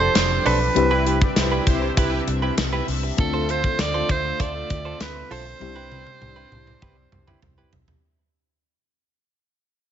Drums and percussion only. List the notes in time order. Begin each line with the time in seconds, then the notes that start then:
0.15 snare, closed hi-hat, tambourine
0.46 open hi-hat
0.76 closed hi-hat
1.07 closed hi-hat
1.22 kick
1.36 snare, closed hi-hat, tambourine
1.67 kick, closed hi-hat
1.97 kick, closed hi-hat
2.28 closed hi-hat
2.58 snare, closed hi-hat, tambourine
2.88 open hi-hat
3.18 kick, closed hi-hat
3.49 closed hi-hat
3.64 kick
3.79 snare, closed hi-hat, tambourine
4.09 kick, closed hi-hat
4.40 kick, closed hi-hat
4.70 kick, closed hi-hat
5.00 snare, closed hi-hat, tambourine
5.31 open hi-hat
5.61 high tom
5.92 high tom
6.07 high tom
6.22 mid tom
6.52 mid tom
6.67 mid tom
6.82 kick, mid tom
7.12 mid tom
7.28 mid tom
7.42 floor tom
7.73 floor tom
7.88 floor tom